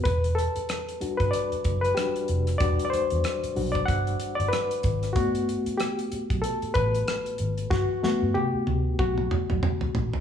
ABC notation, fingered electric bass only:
X:1
M:4/4
L:1/16
Q:"Swing 16ths" 1/4=94
K:Em
V:1 name="Fingered electric bass" clef=bass
E,,,3 z4 G,,, z2 F,,,2 z2 =F,,,2 | E,,, z2 E,, z2 B,,,2 G,,,2 z G,,, z2 ^G,,,2 | G,,,3 z4 B,,, z2 A,,,2 z2 ^G,,,2 | G,,, z2 G,, z2 D,,2 B,,,2 z B,,, z2 _B,,,2 |]